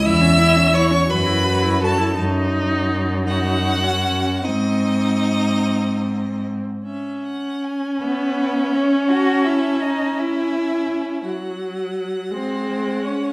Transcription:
X:1
M:6/8
L:1/16
Q:3/8=55
K:C#m
V:1 name="Violin"
e'4 c'2 b4 a2 | z6 f6 | d8- d2 z2 | e2 f2 g2 e6 |
a6 g6 | f12 |]
V:2 name="Violin"
e4 c2 B4 A2 | z6 F6 | D8- D2 z2 | z6 B4 c2 |
f2 e2 d2 e6 | z6 ^B4 c2 |]
V:3 name="Viola"
E C E C E C F E F E F E | D6 D3 C3 | ^B,8- B,3 z | C12- |
C12 | F,6 G,6 |]
V:4 name="Cello"
E,,6 F,,6 | F,,12 | G,,8- G,,3 z | z6 B,4 C2 |
F2 E2 D2 E6 | z6 ^B,4 C2 |]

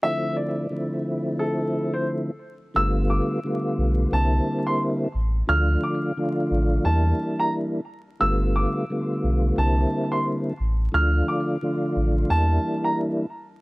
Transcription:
X:1
M:4/4
L:1/16
Q:"Swing 16ths" 1/4=88
K:Dm
V:1 name="Upright piano"
e2 d6 A3 c z4 | e'2 d'6 a3 c' z4 | f'2 d'6 a3 b z4 | e'2 d'6 a3 c' z4 |
f'2 d'6 a3 b z4 |]
V:2 name="Tonewheel organ"
[D,F,A,CE]4 [D,F,A,CE]8- [D,F,A,CE]2 z2 | [D,G,A,=B,F]4 [D,G,A,B,F]4 [D,G,_B,CE]6 z2 | [D,F,A,DF]4 [D,F,A,DF]4 [E,G,B,DE]6 z2 | [D,G,A,=B,F]4 [D,G,A,B,F]4 [D,G,_B,CE]6 z2 |
[D,F,A,DF]4 [D,F,A,DF]4 [E,G,B,DE]6 z2 |]
V:3 name="Sub bass" clef=bass
z16 | G,,,3 z3 =B,,,2 C,,2 z4 A,,,2 | D,,2 z4 A,,,2 E,,2 z6 | G,,,3 z3 =B,,,2 C,,2 z4 A,,,2 |
D,,2 z4 A,,,2 E,,2 z6 |]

